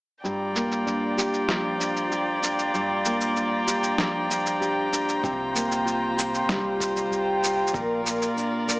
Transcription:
0.24 steel-string acoustic guitar G2 G4, string quartet F4 D5 G5 A#5, shaker
0.55 steel-string acoustic guitar A#3, shaker
0.72 shaker
0.86 steel-string acoustic guitar D4, shaker
1.17 steel-string acoustic guitar G4, shaker
1.34 shaker
1.48 steel-string acoustic guitar F3, snare, shaker
1.80 steel-string acoustic guitar D4, shaker
1.96 shaker
2.12 steel-string acoustic guitar G4, shaker
2.43 steel-string acoustic guitar D4, shaker
2.59 shaker
2.74 steel-string acoustic guitar G2 G4, shaker
3.05 steel-string acoustic guitar A#3, shaker
3.21 shaker
3.36 steel-string acoustic guitar D4, shaker
3.67 steel-string acoustic guitar G4, shaker
3.83 shaker
3.98 steel-string acoustic guitar F3, snare, shaker
4.30 steel-string acoustic guitar D4, shaker
4.46 shaker
4.61 steel-string acoustic guitar G4, shaker
4.92 steel-string acoustic guitar D4, shaker
5.09 shaker
5.23 analog synth bass C2, steel-string acoustic guitar C3 G4, string quartet F4 C5, kick, shaker
5.55 steel-string acoustic guitar A#3, shaker
5.72 shaker
5.85 steel-string acoustic guitar F4, shaker
6.17 steel-string acoustic guitar G4, shaker
6.34 shaker
6.49 analog synth bass G1, steel-string acoustic guitar G3, kick, snare, shaker
6.64 analog synth bass C2
6.80 steel-string acoustic guitar F4, kick, shaker
6.97 shaker
7.10 analog synth bass C2, steel-string acoustic guitar G4, shaker
7.44 shaker
7.67 shaker
7.73 analog synth bass A#1, steel-string acoustic guitar A#2 A#4, string quartet A#4 D5, kick, shaker
8.04 steel-string acoustic guitar A#3, shaker
8.22 shaker
8.37 steel-string acoustic guitar D4, shaker
8.67 steel-string acoustic guitar A#4, shaker

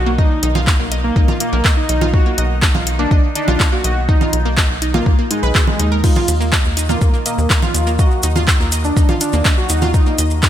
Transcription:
Already playing: analog synth bass B1, synth drone D#3 D#4, analog synth lead F#4
0.06 synth arpeggio sound A#3
0.18 analog synth lead D#4, synth arpeggio sound D#5, kick
0.43 analog synth bass B1, synth arpeggio sound D#4, closed hi-hat
0.55 synth arpeggio sound F4, low conga
0.67 kick, clap
0.80 analog synth bass B1, synth arpeggio sound A#3
0.92 synth arpeggio sound D#5, closed hi-hat
1.04 analog synth lead A#3
1.16 analog synth bass B1, synth arpeggio sound D#4, kick
1.28 synth arpeggio sound F4, low conga
1.40 analog synth lead A#3, closed hi-hat
1.53 analog synth bass B1, synth arpeggio sound A#3
1.65 synth arpeggio sound D#5, kick, clap
1.77 analog synth lead D#4
1.89 analog synth bass B1, synth arpeggio sound D#4, closed hi-hat
2.01 synth arpeggio sound F4, low conga
2.14 analog synth lead F#4, kick
2.26 synth arpeggio sound A#3
2.38 analog synth bass B1, synth arpeggio sound D#5, closed hi-hat
2.62 synth arpeggio sound D#4, kick, clap
2.75 analog synth bass B1, synth arpeggio sound F4, low conga
2.87 closed hi-hat
2.99 synth arpeggio sound A#3, analog synth lead D4
3.11 analog synth bass B1, synth arpeggio sound D#5, kick
3.35 analog synth lead D4, synth arpeggio sound D#4, closed hi-hat
3.48 analog synth bass B1, synth arpeggio sound F4, low conga
3.60 kick, clap
3.72 synth arpeggio sound A#3, analog synth lead F#4
3.84 analog synth bass B1, synth arpeggio sound D#5, closed hi-hat
4.09 synth arpeggio sound D#4, analog synth lead D#4, kick
4.21 synth arpeggio sound F4, low conga
4.33 analog synth bass B1, closed hi-hat
4.45 synth arpeggio sound A#3
4.57 synth arpeggio sound D#5, kick, clap
4.70 analog synth bass B1
4.82 synth arpeggio sound D#4, closed hi-hat
4.94 analog synth lead A#3, synth arpeggio sound F4, low conga
5.06 analog synth bass B1, kick
5.19 synth arpeggio sound A#3
5.31 analog synth lead G#3, synth arpeggio sound D#4, closed hi-hat
5.43 analog synth bass B1, synth arpeggio sound B4
5.55 synth arpeggio sound F#4, kick, clap
5.67 analog synth lead G#3, low conga
5.79 analog synth bass D#2, synth arpeggio sound D#4, closed hi-hat
5.92 synth arpeggio sound A#4
6.04 synth drone D#3 D#4, synth arpeggio sound D#4, analog synth lead F4, kick, crash, maracas
6.15 synth arpeggio sound F4, low conga, maracas
6.28 analog synth bass D#2, closed hi-hat, maracas
6.40 synth arpeggio sound A#3, maracas
6.53 synth arpeggio sound D#5, kick, clap, maracas
6.65 analog synth bass D#2, maracas
6.77 synth arpeggio sound D#4, closed hi-hat, maracas
6.89 analog synth lead A#3, synth arpeggio sound F4, low conga, maracas
7.01 analog synth bass D#2, kick, maracas
7.14 synth arpeggio sound A#3, maracas
7.26 analog synth lead A#3, synth arpeggio sound D#5, closed hi-hat, maracas
7.38 analog synth bass D#2, maracas
7.50 synth arpeggio sound D#4, kick, clap, maracas
7.62 synth arpeggio sound F4, analog synth lead F4, low conga, maracas
7.74 analog synth bass D#2, closed hi-hat, maracas
7.87 synth arpeggio sound A#3, maracas
7.99 analog synth lead F#4, synth arpeggio sound D#5, kick, maracas
8.11 maracas
8.23 analog synth bass D#2, synth arpeggio sound D#4, closed hi-hat, maracas
8.36 synth arpeggio sound F4, low conga, maracas
8.48 kick, clap, maracas
8.60 analog synth bass D#2, synth arpeggio sound A#3, maracas
8.72 synth arpeggio sound D#5, closed hi-hat, maracas
8.84 analog synth lead D4, maracas
8.97 analog synth bass D#2, synth arpeggio sound D#4, kick, maracas
9.09 synth arpeggio sound F4, low conga, maracas
9.21 analog synth lead D4, closed hi-hat, maracas
9.33 analog synth bass D#2, synth arpeggio sound A#3, maracas
9.45 synth arpeggio sound D#5, kick, clap, maracas
9.58 analog synth lead F#4, maracas
9.69 analog synth bass D#2, synth arpeggio sound D#4, closed hi-hat, maracas
9.82 synth arpeggio sound F4, low conga, maracas
9.94 analog synth lead D#4, kick, maracas
10.06 synth arpeggio sound A#3, maracas
10.18 analog synth bass D#2, synth arpeggio sound D#5, closed hi-hat, maracas
10.30 maracas
10.43 synth arpeggio sound D#4, kick, clap, maracas

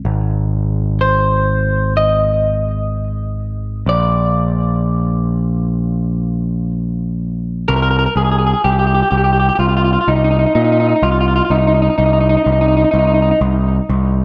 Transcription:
0.05 picked electric bass G#1
1.01 clean electric guitar C5
1.97 clean electric guitar D#5
3.86 picked electric bass A#1, clean electric guitar D5
7.68 picked electric bass C2, clean electric guitar A#4
7.76 clean electric guitar A#4
7.82 clean electric guitar A#4
7.91 clean electric guitar A#4
7.99 clean electric guitar A#4
8.06 clean electric guitar A#4
8.16 picked electric bass C2, clean electric guitar G#4
8.25 clean electric guitar G#4
8.31 clean electric guitar G#4
8.39 clean electric guitar G#4
8.47 clean electric guitar G#4
8.54 clean electric guitar G#4
8.64 picked electric bass C2, clean electric guitar G4
8.72 clean electric guitar G4
8.79 clean electric guitar G4
8.87 clean electric guitar G4
8.95 clean electric guitar G4
9.02 clean electric guitar G4
9.11 picked electric bass C2, clean electric guitar G4
9.17 clean electric guitar G4
9.24 clean electric guitar G4
9.33 clean electric guitar G4
9.40 clean electric guitar G4
9.49 clean electric guitar G4
9.55 picked electric bass C2, clean electric guitar G4
9.59 clean electric guitar F4
9.68 clean electric guitar F4
9.77 clean electric guitar F4
9.84 clean electric guitar F4
9.93 clean electric guitar F4
10.01 clean electric guitar F4
10.08 picked electric bass C2, clean electric guitar D#4
10.16 clean electric guitar D#4
10.24 clean electric guitar D#4
10.31 clean electric guitar D#4
10.39 clean electric guitar D#4
10.46 clean electric guitar D#4
10.55 picked electric bass A#2, clean electric guitar D#4
10.64 clean electric guitar D#4
10.72 clean electric guitar D#4
10.80 clean electric guitar D#4
10.89 clean electric guitar D#4
10.96 clean electric guitar D#4
11.03 picked electric bass C2, clean electric guitar F4
11.12 clean electric guitar F4
11.21 clean electric guitar F4
11.28 clean electric guitar F4
11.36 clean electric guitar F4
11.45 clean electric guitar F4
11.50 picked electric bass C2, clean electric guitar D#4
11.58 clean electric guitar D#4
11.67 clean electric guitar D#4
11.74 clean electric guitar D#4
11.82 clean electric guitar D#4
11.90 clean electric guitar D#4
11.98 picked electric bass C2, clean electric guitar D#4
12.06 clean electric guitar D#4
12.13 clean electric guitar D#4
12.21 clean electric guitar D#4
12.29 clean electric guitar D#4
12.37 clean electric guitar D#4
12.44 picked electric bass C2, clean electric guitar D#4
12.52 clean electric guitar D#4
12.61 clean electric guitar D#4
12.68 clean electric guitar D#4
12.77 clean electric guitar D#4
12.84 clean electric guitar D#4
12.91 picked electric bass C2, clean electric guitar D#4
12.99 clean electric guitar D#4
13.07 clean electric guitar D#4
13.14 clean electric guitar D#4
13.22 clean electric guitar D#4
13.31 clean electric guitar D#4
13.41 picked electric bass C2
13.90 picked electric bass C2

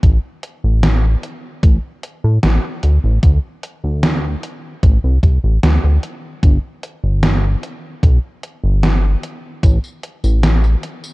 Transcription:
0.03 analog synth bass A1, kick, closed hi-hat
0.43 closed hi-hat
0.64 analog synth bass A1
0.83 snare, closed hi-hat
1.23 closed hi-hat
1.63 analog synth bass A1, kick, closed hi-hat
2.03 closed hi-hat
2.24 analog synth bass A2
2.43 analog synth bass A1, snare, closed hi-hat
2.83 analog synth bass D2, closed hi-hat
3.04 analog synth bass A1
3.23 analog synth bass D2, kick, closed hi-hat
3.63 closed hi-hat
3.84 analog synth bass D2
4.03 snare, closed hi-hat
4.43 closed hi-hat
4.83 analog synth bass A1, kick, closed hi-hat
5.04 analog synth bass C2
5.23 analog synth bass C2, kick, closed hi-hat
5.44 analog synth bass A1
5.63 analog synth bass D2, snare, closed hi-hat
5.84 analog synth bass D2
6.03 closed hi-hat
6.43 analog synth bass G1, kick, closed hi-hat
6.83 closed hi-hat
7.04 analog synth bass G1
7.23 snare, closed hi-hat
7.63 closed hi-hat
8.03 analog synth bass B1, kick, closed hi-hat
8.43 closed hi-hat
8.64 analog synth bass G1
8.83 snare, closed hi-hat
9.23 closed hi-hat
9.63 analog synth bass A1, kick, closed hi-hat, tambourine
9.84 tambourine
10.03 closed hi-hat
10.24 analog synth bass A1, tambourine
10.43 snare, closed hi-hat, tambourine
10.64 tambourine
10.83 closed hi-hat
11.04 tambourine

